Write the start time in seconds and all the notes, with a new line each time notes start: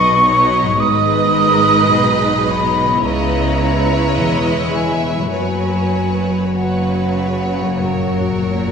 Already playing: B1 B2 F#3 D#4 B4 D#5 C#6
0.24 F#3 D#4 B4 C#5 D#5
0.61 G#2
0.66 B3
0.71 D#4
0.75 D#5
0.79 G#1 G#2 G#3 D#4 B4 D#5 D#6
1.36 A#4
1.90 B1 B2 B4
2.47 C#5 B5
2.85 C#3
2.90 B3
2.94 E4
2.99 C#3 C#5 D#5
3.03 C#2 G#3 E4 B4 C#5 A#5
3.58 C#5
4.15 E1 E2 D#5
4.74 E5 G#5
5.16 F#2
5.20 B3
5.25 F#4
5.29 F#2 B4 C#5
5.34 F#1 F#3 F#4 G#5
6.53 C#3 F#3 F#4 B4 C#5 F#5
7.61 F#2
7.65 A#3
7.70 F#4
7.74 C#5
7.78 F#1 F#2 F#3 F#4 A#4
7.87 F#2
7.95 F#2
8.03 F#2
8.12 F#2
8.20 F#2
8.28 F#2
8.37 F#2
8.45 F#2 A#2
8.54 F#2
8.62 F#2